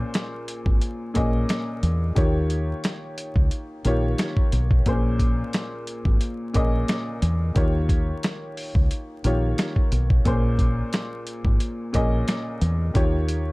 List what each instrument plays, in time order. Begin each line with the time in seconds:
Already playing: upright piano A#2 A#3 C#4 G#4 C5
0.14 snare, closed hi-hat
0.48 closed hi-hat
0.66 fingered electric bass G#1, kick
0.82 closed hi-hat
1.14 fingered electric bass A#1, upright piano A#2 A#3 C#4 G#4 D#5, kick, closed hi-hat
1.49 snare, closed hi-hat
1.83 fingered electric bass E2, closed hi-hat
2.15 fingered electric bass D#2, upright piano D#3 A#3 F4 G4 C#5, kick, closed hi-hat
2.50 closed hi-hat
2.84 snare, closed hi-hat
3.18 closed hi-hat
3.36 fingered electric bass C#2, kick
3.51 closed hi-hat
3.85 fingered electric bass A#1, upright piano D#3 A#3 F4 G4 C#5, closed hi-hat
4.18 snare, closed hi-hat
4.37 kick
4.52 fingered electric bass B1, closed hi-hat
4.71 kick
4.86 fingered electric bass A#1, upright piano A#2 A#3 C#4 G#4 C5, kick, closed hi-hat
5.19 kick, closed hi-hat
5.53 snare, closed hi-hat
5.87 closed hi-hat
6.05 fingered electric bass G#1, kick
6.21 closed hi-hat
6.53 fingered electric bass A#1, upright piano A#2 A#3 C#4 G#4 D#5, kick, closed hi-hat
6.88 snare, closed hi-hat
7.22 fingered electric bass E2, closed hi-hat
7.55 fingered electric bass D#2, upright piano D#3 A#3 F4 G4 C#5, kick, closed hi-hat
7.89 kick, closed hi-hat
8.23 snare, closed hi-hat
8.57 open hi-hat
8.75 fingered electric bass C#2, kick
8.91 closed hi-hat
9.24 fingered electric bass A#1, upright piano D#3 A#3 F4 G4 C#5, closed hi-hat
9.58 snare, closed hi-hat
9.76 kick
9.92 fingered electric bass B1, closed hi-hat
10.10 kick
10.25 fingered electric bass A#1, upright piano A#2 A#3 C#4 G#4 C5, kick, closed hi-hat
10.59 kick, closed hi-hat
10.93 snare, closed hi-hat
11.27 closed hi-hat
11.45 fingered electric bass G#1, kick
11.60 closed hi-hat
11.93 fingered electric bass A#1, upright piano A#2 A#3 C#4 G#4 D#5, kick, closed hi-hat
12.28 snare, closed hi-hat
12.61 fingered electric bass E2, closed hi-hat
12.94 fingered electric bass D#2, upright piano D#3 A#3 F4 G4 C#5, kick, closed hi-hat
13.29 closed hi-hat